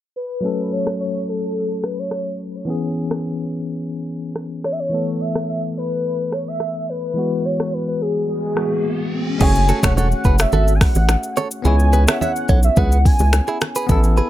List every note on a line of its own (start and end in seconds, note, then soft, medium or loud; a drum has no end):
0.16 0.74 B4 loud
0.41 2.62 F#3 medium
0.41 2.63 A3 medium
0.41 2.64 C#4 medium
0.46 2.65 A4 medium
0.72 1.00 C#5 loud
0.87 finger snap medium
0.87 cross-stick loud
1.00 1.26 C#5 loud
1.28 1.86 A4 loud
1.84 2.01 B4 medium
1.84 finger snap medium
1.84 cross-stick medium
1.99 2.40 C#5 medium
2.11 finger snap medium
2.11 cross-stick medium
2.65 4.87 E3 medium
2.65 4.88 B3 medium
2.65 4.88 C#4 medium
2.70 4.89 G#4 medium
3.11 finger snap loud
3.11 cross-stick loud
4.36 finger snap medium
4.36 cross-stick medium
4.64 4.73 C#5 loud
4.64 finger snap medium
4.64 cross-stick medium
4.72 4.81 E5 medium
4.80 5.22 C#5 loud
4.89 7.11 E3 medium
4.89 7.12 A3 medium
4.89 7.13 B3 medium
4.94 7.14 A4 medium
5.21 5.49 E5 loud
5.35 finger snap medium
5.35 cross-stick loud
5.49 5.61 E5 loud
5.77 6.35 B4 loud
6.32 6.47 C#5 medium
6.32 finger snap medium
6.32 cross-stick medium
6.48 6.86 E5 loud
6.60 finger snap medium
6.60 cross-stick medium
6.89 7.47 B4 loud
7.14 8.52 E3 medium
7.14 8.53 G#3 medium
7.14 8.54 B3 medium
7.14 riser medium
7.19 8.55 F#4 medium
7.45 7.75 C#5 loud
7.60 finger snap loud
7.60 cross-stick loud
7.74 7.88 B4 medium
7.88 8.03 B4 medium
8.02 8.29 G#4 medium
8.29 9.09 G#4 medium
8.55 9.40 E3 soft
8.55 9.37 G#3 soft
8.55 9.41 B3 soft
8.55 9.40 F#4 medium
8.55 finger snap medium
8.55 cross-stick medium
9.38 9.72 F#1 loud
9.38 9.46 G#3 medium
9.38 11.60 C#4 medium
9.38 9.51 C#4 medium
9.38 11.61 F#4 medium
9.38 9.51 G#4 medium
9.38 11.62 G#4 medium
9.38 9.86 G#5 loud
9.38 kick loud
9.38 crash loud
9.38 low conga medium
9.38 shaker medium
9.43 11.63 A3 medium
9.43 11.62 C#5 medium
9.55 shaker medium
9.69 9.80 F#4 medium
9.69 9.79 A4 medium
9.69 low bongo medium
9.69 shaker medium
9.83 10.14 E1 medium
9.83 9.93 A4 medium
9.83 9.93 C#5 medium
9.83 9.97 F#5 loud
9.83 finger snap loud
9.83 kick loud
9.83 cross-stick loud
9.83 low bongo medium
9.83 shaker loud
9.97 10.08 A4 medium
9.97 10.07 C#5 medium
9.97 10.42 F#5 loud
9.97 high bongo medium
9.97 low conga medium
9.97 shaker medium
10.12 shaker soft
10.24 10.46 F#1 medium
10.24 10.36 G#4 medium
10.24 10.35 B4 medium
10.24 kick medium
10.24 shaker soft
10.38 10.53 E5 medium
10.38 finger snap medium
10.38 cross-stick loud
10.38 shaker medium
10.52 10.84 G#1 loud
10.52 10.73 F#4 medium
10.52 10.72 A4 medium
10.52 10.73 E5 loud
10.52 low conga medium
10.52 shaker medium
10.68 shaker medium
10.75 10.83 G#5 medium
10.81 11.37 F#5 medium
10.81 finger snap medium
10.81 kick loud
10.81 cross-stick medium
10.81 open hi-hat medium
10.81 shaker medium
10.95 11.16 A1 medium
10.95 low bongo medium
10.95 shaker medium
11.09 finger snap medium
11.09 cross-stick medium
11.09 high bongo medium
11.09 shaker medium
11.23 shaker medium
11.37 11.48 A4 medium
11.37 11.47 C#5 medium
11.37 low bongo medium
11.37 shaker medium
11.51 shaker loud
11.62 12.07 C#2 loud
11.62 13.84 B3 medium
11.62 13.85 C#4 medium
11.62 13.85 E4 medium
11.62 11.76 E4 medium
11.62 11.75 G#4 medium
11.62 13.86 G#4 medium
11.62 12.10 G#5 loud
11.62 low conga medium
11.62 shaker medium
11.67 13.86 C#5 medium
11.79 shaker medium
11.93 12.04 G#4 medium
11.93 12.03 B4 medium
11.93 low bongo medium
11.93 shaker medium
12.08 12.18 C#5 medium
12.08 12.17 E5 medium
12.08 12.21 F#5 loud
12.08 finger snap loud
12.08 cross-stick loud
12.08 low bongo medium
12.08 shaker loud
12.21 12.32 C#5 medium
12.21 12.31 E5 medium
12.21 12.61 F#5 loud
12.21 high bongo medium
12.21 low conga medium
12.21 shaker medium
12.36 shaker soft
12.49 12.70 B1 loud
12.49 12.60 A4 medium
12.49 12.59 C#5 loud
12.49 kick medium
12.49 shaker soft
12.63 12.79 E5 medium
12.63 shaker medium
12.76 13.09 C#2 loud
12.76 12.97 G#4 medium
12.76 12.97 B4 medium
12.76 13.07 F#5 loud
12.76 kick loud
12.76 low conga medium
12.76 shaker medium
12.92 shaker medium
13.05 13.62 G#5 loud
13.05 kick loud
13.05 open hi-hat medium
13.05 shaker medium
13.19 13.41 C#2 medium
13.19 low bongo medium
13.19 shaker medium
13.33 finger snap medium
13.33 cross-stick loud
13.33 high bongo medium
13.33 shaker medium
13.47 13.58 E4 medium
13.47 13.57 G#4 medium
13.47 shaker medium
13.61 finger snap medium
13.61 cross-stick medium
13.61 low bongo medium
13.61 shaker medium
13.75 13.86 G#4 medium
13.75 13.85 B4 medium
13.75 shaker loud
13.87 14.21 A1 loud
13.87 14.30 B3 medium
13.87 14.30 E4 medium
13.87 14.00 E4 medium
13.87 13.99 A4 medium
13.87 kick loud
13.87 low conga medium
13.87 shaker medium
13.92 14.30 A4 medium
14.04 shaker medium
14.17 14.28 G#4 medium
14.17 14.28 B4 medium
14.17 low bongo medium
14.17 shaker medium